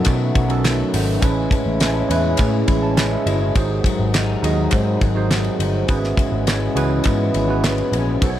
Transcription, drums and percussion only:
0.05 kick loud
0.05 clap medium
0.05 ride medium
0.35 kick medium
0.35 ride medium
0.50 ride soft
0.65 snare loud
0.65 clap medium
0.65 ride medium
0.94 open hi-hat medium
0.94 ride medium
1.22 kick loud
1.22 hi-hat pedal medium
1.22 ride medium
1.51 kick loud
1.51 ride medium
1.80 snare medium
1.80 clap medium
1.80 ride medium
2.11 ride medium
2.37 kick loud
2.37 clap medium
2.37 ride medium
2.68 kick medium
2.68 ride medium
2.98 snare loud
2.98 clap medium
2.98 ride medium
3.27 ride medium
3.55 kick loud
3.55 ride medium
3.84 kick medium
3.84 ride medium
4.14 snare loud
4.14 clap medium
4.14 ride medium
4.44 ride medium
4.71 kick loud
4.71 clap medium
4.71 ride medium
5.01 kick medium
5.01 ride medium
5.31 snare loud
5.31 clap medium
5.31 ride medium
5.44 ride soft
5.60 ride medium
5.88 kick loud
5.88 ride medium
6.04 snare soft
6.17 kick loud
6.17 ride medium
6.47 snare loud
6.47 clap medium
6.47 ride medium
6.77 ride medium
7.04 kick loud
7.04 clap medium
7.04 ride medium
7.34 ride medium
7.64 snare loud
7.64 clap medium
7.64 ride medium
7.78 ride soft
7.93 ride medium
8.22 kick loud
8.22 ride medium

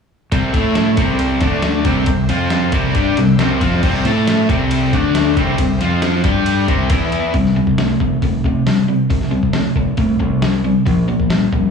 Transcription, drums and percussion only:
0.32 kick loud
0.32 ride medium
0.54 kick medium
0.54 ride medium
0.75 snare loud
0.75 ride medium
0.97 kick loud
0.97 ride medium
1.19 ride medium
1.41 kick loud
1.41 snare soft
1.41 ride medium
1.62 snare loud
1.62 ride medium
1.85 kick loud
1.85 ride medium
2.06 kick loud
2.06 ride loud
2.29 ride medium
2.50 snare loud
2.50 ride medium
2.72 kick loud
2.72 ride medium
2.95 kick loud
2.95 ride medium
3.17 snare soft
3.17 ride medium
3.39 snare loud
3.39 ride medium
3.61 kick loud
3.61 ride medium
3.72 snare soft
3.83 kick loud
3.83 crash medium
4.05 ride medium
4.27 snare loud
4.27 ride medium
4.49 kick loud
4.49 ride medium
4.71 ride loud
4.93 kick loud
4.93 snare soft
4.93 ride medium
5.15 snare loud
5.15 ride loud
5.37 kick loud
5.37 ride medium
5.58 kick medium
5.58 ride loud
5.81 ride medium
6.02 snare loud
6.02 ride medium
6.24 kick loud
6.24 ride medium
6.46 ride medium
6.68 kick medium
6.68 ride medium
6.90 kick loud
6.90 ride loud
7.12 ride medium
7.34 kick loud
7.34 open hi-hat soft
7.45 snare soft
7.67 kick medium
7.78 snare loud
7.78 open hi-hat soft
8.00 kick medium
8.22 kick medium
8.22 open hi-hat soft
8.44 kick medium
8.67 snare loud
8.67 open hi-hat medium
9.10 kick loud
9.10 open hi-hat medium
9.21 snare soft
9.43 kick medium
9.53 snare loud
9.53 open hi-hat soft
9.76 kick medium
9.97 kick loud
9.97 open hi-hat soft
10.20 kick medium
10.42 snare loud
10.42 open hi-hat soft
10.87 kick medium
10.87 open hi-hat soft
11.20 kick medium
11.30 snare loud
11.30 open hi-hat soft
11.53 kick medium

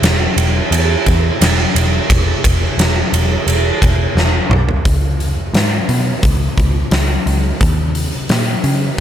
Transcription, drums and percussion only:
0.03 snare loud
0.03 ride loud
0.38 ride medium
0.72 ride loud
1.06 kick medium
1.06 ride medium
1.42 snare loud
1.42 ride loud
1.76 ride medium
2.10 kick loud
2.10 ride loud
2.44 kick medium
2.44 ride medium
2.79 snare loud
2.79 ride loud
3.14 ride medium
3.48 ride medium
3.82 kick medium
3.82 ride medium
4.17 snare medium
4.51 mid tom medium
4.69 floor tom medium
4.85 kick loud
4.85 open hi-hat medium
5.20 open hi-hat medium
5.54 snare loud
5.54 open hi-hat medium
5.89 open hi-hat medium
6.23 kick loud
6.23 open hi-hat medium
6.57 kick medium
6.57 open hi-hat soft
6.91 snare loud
6.91 open hi-hat medium
7.27 open hi-hat medium
7.61 kick loud
7.61 open hi-hat medium
7.95 open hi-hat medium
8.29 snare loud
8.29 open hi-hat medium
8.64 open hi-hat medium

